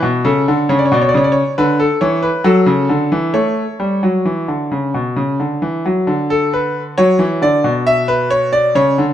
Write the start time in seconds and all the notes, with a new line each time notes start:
0.02 B2
0.24 C#3 A4
0.48 D3
0.69 C#3 C#5
0.79 D5
0.86 C#5
0.92 B2 D5
1.01 C#5
1.09 D5
1.14 C#3 C#5
1.24 D5
1.32 C#5
1.58 D3 B4
1.80 A4
2.01 E3 C#5
2.23 B4
2.44 F#3 A4
2.66 C#3
2.89 D3
3.12 E3
3.34 A3 C#5
3.80 G3
4.03 F#3
4.25 E3
4.48 D3
4.71 C#3
4.94 B2
5.16 C#3
5.40 D3
5.62 E3
5.86 F#3
6.07 D3
6.30 A4
6.54 B4
6.98 F#3 C#5
7.19 E3
7.42 D3 D5
7.64 B2
7.87 E5
8.08 B4
8.30 C#5
8.53 D5
8.75 C#3 C#5
8.98 D3